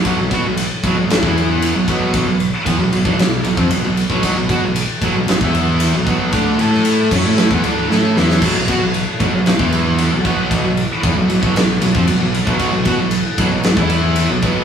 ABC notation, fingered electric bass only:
X:1
M:4/4
L:1/16
Q:1/4=115
K:E
V:1 name="Fingered electric bass" clef=bass
B,,, B,,, B,, B,,,2 z B,,, B,,, B,,, E,,4 B,,, B,,,2- | B,,, B,,,2 z E,, B,,, B,,, B,,, B,,,2 B,,, ^E,, B,,, B,,,2 B,,, | B,,, B,,, B,, B,,,2 z B,,, B,,, B,,, E,,4 B,,, B,,,2 | =D,,2 A,,4 F,, A,,2 E,, D,,2 A,,2 E,,2 |
B,,, B,,, B,, B,,,2 z B,,, B,,, B,,, E,,4 B,,, B,,,2- | B,,, B,,,2 z E,, B,,, B,,, B,,, B,,,2 B,,, ^E,, B,,, B,,,2 B,,, | B,,, B,,, B,, B,,,2 z B,,, B,,, B,,, E,,4 B,,, B,,,2 |]